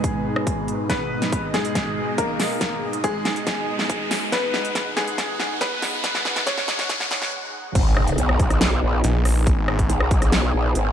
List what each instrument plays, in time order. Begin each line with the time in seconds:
Already playing: analog synth pad G#2 B2 G#3 D#4 B4, grand piano G#4 G#5, riser
0.04 kick, closed hi-hat
0.36 cross-stick
0.47 kick, closed hi-hat
0.68 closed hi-hat
0.90 grand piano B3 B4, analog synth pad D#5, kick, snare, closed hi-hat
1.22 snare, closed hi-hat
1.32 kick, closed hi-hat
1.54 grand piano G#3 G#4, snare, closed hi-hat
1.65 closed hi-hat
1.75 kick, snare, closed hi-hat
2.18 grand piano A#3 A#4, kick, closed hi-hat
2.40 snare, open hi-hat
2.61 kick, snare, closed hi-hat
2.93 closed hi-hat
3.04 grand piano G#3 G#4, kick, closed hi-hat
3.25 snare, closed hi-hat
3.36 closed hi-hat
3.47 kick, snare, closed hi-hat
3.79 snare
3.90 kick, closed hi-hat
4.11 snare, open hi-hat
4.32 grand piano B3 B4, analog synth pad F#5, kick, snare, closed hi-hat
4.54 snare
4.65 closed hi-hat
4.75 kick, snare, closed hi-hat
4.97 grand piano G#3 G#4, snare, closed hi-hat
5.08 closed hi-hat
5.18 kick, snare, closed hi-hat
5.40 snare
5.61 grand piano B3 B4, kick, snare, closed hi-hat
5.82 snare, open hi-hat
6.04 kick, snare, closed hi-hat
6.15 snare
6.25 snare
6.36 snare, closed hi-hat
6.47 grand piano C#4 C#5, kick, snare, closed hi-hat
6.58 snare
6.68 snare, closed hi-hat
6.79 snare, closed hi-hat
6.89 kick, snare, closed hi-hat
7.00 snare
7.11 snare
7.22 snare
7.75 wobble bass G#1, analog synth pad B3 D#4 G#4, kick, closed hi-hat, crash, impact
7.97 cross-stick
8.08 closed hi-hat
8.18 wobble bass B1, closed hi-hat
8.29 cross-stick
8.40 kick, closed hi-hat
8.50 cross-stick, closed hi-hat
8.61 snare, closed hi-hat
8.82 wobble bass A#1
9.04 detuned saw bass A#1, closed hi-hat
9.25 cross-stick, open hi-hat
9.47 detuned saw bass A1, kick, closed hi-hat
9.68 detuned saw bass G#1, cross-stick
9.79 kick, closed hi-hat
9.90 wobble bass B1, closed hi-hat
10.00 cross-stick
10.11 kick, closed hi-hat
10.22 cross-stick, closed hi-hat
10.32 snare, closed hi-hat
10.54 wobble bass A#1
10.75 wobble bass G#1, closed hi-hat